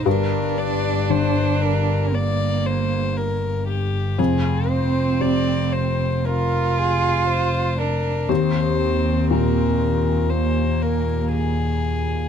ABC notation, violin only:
X:1
M:4/4
L:1/8
Q:1/4=59
K:Gphr
V:1 name="Violin"
B d c B d c B G | A c d c B A c B | c2 B2 c B A2 |]